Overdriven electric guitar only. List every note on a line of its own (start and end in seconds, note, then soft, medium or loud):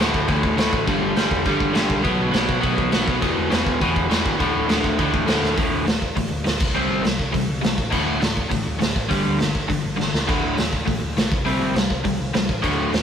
0.00 0.26 D2 medium
0.00 0.27 A2 loud
0.00 0.28 D3 loud
0.28 0.57 D2 medium
0.28 0.57 A2 medium
0.28 0.56 D3 medium
0.57 0.86 D2 medium
0.57 0.86 A2 medium
0.57 0.86 D3 medium
0.87 1.16 G2 medium
0.87 1.16 D3 medium
0.87 1.16 G3 loud
1.17 1.45 G2 medium
1.17 1.45 D3 medium
1.17 1.45 G3 loud
1.46 1.74 G2 medium
1.46 1.73 D3 medium
1.46 1.72 G3 loud
1.73 2.02 G2 medium
1.73 2.03 D3 medium
1.73 2.03 G3 loud
2.03 2.31 B2 medium
2.03 2.30 F#3 medium
2.03 2.31 B3 medium
2.31 2.60 B2 medium
2.31 2.60 F#3 loud
2.31 2.60 B3 loud
2.61 2.92 B2 medium
2.61 2.92 F#3 loud
2.61 2.91 B3 medium
2.92 3.20 B2 medium
2.92 3.21 F#3 medium
2.92 3.21 B3 loud
3.21 3.50 E2 medium
3.21 3.49 B2 loud
3.21 3.49 E3 loud
3.50 3.80 E2 medium
3.50 3.80 B2 loud
3.50 3.81 E3 loud
3.81 4.10 E2 medium
3.81 4.09 B2 medium
3.81 4.08 E3 medium
4.10 4.39 E2 medium
4.10 4.39 B2 medium
4.10 4.38 E3 loud
4.39 4.69 D2 medium
4.39 4.68 A2 medium
4.39 4.68 D3 medium
4.69 4.96 D2 medium
4.69 4.98 A2 loud
4.69 4.98 D3 loud
4.98 5.27 D2 medium
4.98 5.27 A2 medium
4.98 5.26 D3 medium
5.27 5.55 D2 medium
5.27 5.56 A2 medium
5.27 5.56 D3 loud
5.57 5.84 D2 medium
5.57 5.85 A2 medium
5.57 5.86 D3 medium
5.86 5.99 D2 medium
5.86 6.00 A2 medium
6.16 6.29 D2 medium
6.16 6.30 A2 medium
6.45 6.58 D2 medium
6.45 6.58 A2 medium
6.75 7.02 C3 medium
6.75 7.02 G3 medium
6.75 7.04 C4 medium
7.03 7.17 C3 medium
7.03 7.17 G3 medium
7.33 7.47 C3 medium
7.33 7.47 G3 medium
7.61 7.76 C3 medium
7.61 7.76 G3 medium
7.90 8.19 D2 medium
7.90 8.19 A2 medium
7.90 8.21 D3 medium
8.20 8.35 D2 medium
8.20 8.35 A2 medium
8.49 8.64 D2 medium
8.49 8.64 A2 medium
8.79 8.93 D2 medium
8.79 8.94 A2 medium
9.09 9.37 G2 medium
9.09 9.37 D3 medium
9.09 9.39 G3 medium
9.38 9.52 G2 medium
9.38 9.53 D3 medium
9.68 9.82 G2 medium
9.68 9.82 D3 medium
9.97 10.11 G2 medium
9.97 10.11 D3 medium
10.27 10.55 D2 medium
10.27 10.56 A2 medium
10.27 10.57 D3 medium
10.56 10.70 D2 medium
10.56 10.71 A2 medium
10.86 11.00 D2 medium
10.86 11.00 A2 medium
11.17 11.30 D2 medium
11.17 11.30 A2 medium
11.45 11.73 C3 medium
11.45 11.74 G3 medium
11.45 11.75 C4 medium
11.75 11.88 C3 medium
11.75 11.89 G3 medium
12.04 12.18 C3 medium
12.04 12.18 G3 medium
12.34 12.47 C3 medium
12.34 12.48 G3 loud
12.62 12.92 D2 medium
12.62 12.92 A2 medium
12.62 12.92 D3 loud
12.93 13.02 D2 medium
12.93 13.02 A2 medium